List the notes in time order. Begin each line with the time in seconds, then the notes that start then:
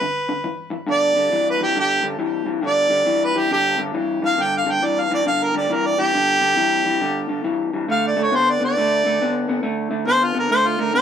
Already playing: B4
0.01 G2 D3
0.29 G2 D3
0.44 G2 E3
0.70 G2 E3
0.87 G2 D3
0.91 D5
1.16 G2 D3
1.32 G2 E3
1.50 B4
1.60 G2 E3 G4
1.76 G2 D3 G4
2.03 G2 D3
2.19 G2 E3
2.46 G2 E3
2.61 G2 D3
2.67 D5
2.90 G2 D3
3.06 G2 E3
3.24 B4
3.35 G2 E3 G4
3.51 G2 D3 G4
3.78 G2 D3
3.94 G2 E3
4.22 G2 E3 F5
4.38 G2 D3
4.42 G5
4.58 F5
4.66 G2 D3
4.71 G5
4.82 G2 E3 D5
5.00 F5
5.11 G2 E3 D5
5.26 G2 D3 F5
5.43 A#4
5.54 G2 D3 D5
5.70 G2 E3 A#4
5.86 D5
5.98 G2 E3 G4
6.14 G2 D3
6.41 G2 D3
6.56 G2 E3
6.85 G2 E3
7.01 G2 D3
7.29 G2 D3
7.44 G2 E3
7.73 G2 E3
7.88 D3 A3 F5
8.07 D5
8.16 D3 A3
8.23 C#5
8.31 D3 B3
8.36 C5
8.50 D5
8.60 D3 B3 D5
8.77 D3 A3
9.05 D3 A3
9.22 D3 B3
9.48 D3 B3
9.63 D3 A3
9.91 D3 A3
10.07 D3 B3 C5
10.24 F4
10.34 D3 B3
10.39 A#4
10.50 D3 A3 C5
10.67 F4
10.79 D3 A3 A#4
10.93 D3 B3 C5